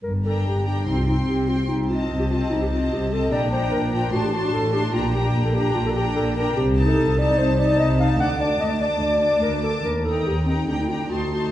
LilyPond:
<<
  \new Staff \with { instrumentName = "Violin section" } { \time 4/4 \key g \minor \tempo 4 = 147 r8 bes''4 bes''8 c'''8 c'''4 c'''8 | r8 a''4 a''4 a''4 a''8 | bes''8 bes''4 bes''8 c'''8 c'''4 c'''8 | bes''8 bes''4 bes''4 bes''4 bes''8 |
r8 a''4 a''4 a''4 a''8 | d'''8 d'''4 d'''4 d'''4 d'''8 | r8 bes''4 bes''8 bes''8 bes''8 c'''8 c'''8 | }
  \new Staff \with { instrumentName = "Violin section" } { \time 4/4 \key g \minor r8 g''4 g''8 g''8 g''4 g''8 | r8 ees''4 ees''4 ees''4 ees''8 | g''8 g''4 g''8 a''8 a''4 a''8 | g''8 g''4 g''4 g''4 g''8 |
r8 a''4 a''4 a''4 a''8 | a''8 a''4 a''4 a''4 a''8 | r8 g''4 g''8 g''8 g''8 a''8 a''8 | }
  \new Staff \with { instrumentName = "Clarinet" } { \time 4/4 \key g \minor bes'8 a'8 g'8 d'8 ees'16 f'16 ees'8 g'8 f'8 | ees'8 f'8. g'16 f'8 ees'16 g'16 f'8 g'8 a'8 | d''8 c''8 bes'8 f'8 fis'16 g'16 fis'8 a'8 g'8 | f'8 g'8. a'16 g'8 f'16 a'16 g'8 a'8 bes'8 |
g'8. a'8. d''8 c''8 d''8 ees''8 f''8 | fis''8 d''8 ees''8 d''8 d''4 bes'8 a'8 | bes'8 a'8 g'8 c'8 d'16 ees'16 f'8 fis'8 fis'8 | }
  \new Staff \with { instrumentName = "Viola section" } { \time 4/4 \key g \minor r8 d'4 d'8 c'8 c'4 c'8 | r8 c'4 c'4 c'4 c'8 | d'8 d'4 d'8 d'8 d'4 d'8 | d'8 d'4 d'4 d'4 d'8 |
r8 ees'4 ees'4 ees'4 ees'8 | d'8 d'4 d'4 d'4 d'8 | r8 ees'4 ees'8 d'8 d'8 ees'8 ees'8 | }
  \new Staff \with { instrumentName = "Cello section" } { \clef bass \time 4/4 \key g \minor g,4 g,4 c4 c4 | c4 c4 c4 c4 | bes,4 bes,4 a,4 a,4 | bes,4 bes,4 bes,4 bes,4 |
c4 c4 c4 c4 | d,4 d,4 d,4 d,4 | ees,4 ees,4 d,4 d,4 | }
  \new Staff \with { instrumentName = "Double bass section" } { \clef bass \time 4/4 \key g \minor g,,4 g,,4 c,4 c,4 | c,4 c,4 c,4 c,4 | bes,,4 bes,,4 a,,4 a,,4 | bes,,4 bes,,4 bes,,4 bes,,4 |
c,4 c,4 c,4 c,4 | d,4 d,4 d,4 d,4 | ees,4 ees,4 d,4 d,4 | }
>>